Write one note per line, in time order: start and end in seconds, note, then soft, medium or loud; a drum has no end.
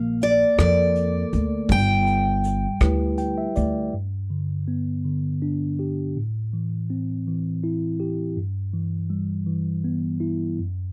0.00 0.42 A#1 medium
0.00 1.66 A#3 medium
0.00 0.23 F5 medium
0.21 0.56 D5 medium
0.21 closed hi-hat medium
0.58 1.22 F2 medium
0.58 1.66 A4 soft
0.58 1.66 A#4 soft
0.58 1.67 D5 medium
0.58 1.71 D5 medium
0.58 cross-stick medium
0.58 closed hi-hat medium
0.95 closed hi-hat soft
1.33 1.70 D2 medium
1.33 closed hi-hat soft
1.69 2.65 G1 medium
1.69 3.90 G3 medium
1.69 3.53 G5 loud
1.69 kick medium
1.69 closed hi-hat medium
2.06 closed hi-hat soft
2.44 closed hi-hat medium
2.80 3.45 D2 medium
2.80 3.90 E4 soft
2.80 3.90 G4 soft
2.80 3.90 B4 soft
2.80 kick medium
2.80 cross-stick medium
2.80 closed hi-hat medium
3.18 3.36 G5 medium
3.18 closed hi-hat soft
3.38 3.55 E5 medium
3.56 3.89 D2 medium
3.56 3.91 D5 medium
3.56 closed hi-hat soft
3.94 6.12 G2 soft
4.30 5.04 D3 soft
4.68 6.12 B3 soft
5.05 6.13 D3 soft
5.42 6.14 D4 soft
5.79 6.15 G4 soft
6.17 8.33 A2 soft
6.53 7.26 E3 soft
6.90 8.33 C4 soft
7.27 8.34 E3 soft
7.64 8.35 E4 soft
8.00 8.36 G4 soft
8.37 10.54 G2 soft
8.73 9.45 E3 soft
9.10 10.54 G3 soft
9.46 10.55 E3 soft
9.84 10.56 B3 soft
10.20 10.57 E4 soft
10.59 10.92 F#2 soft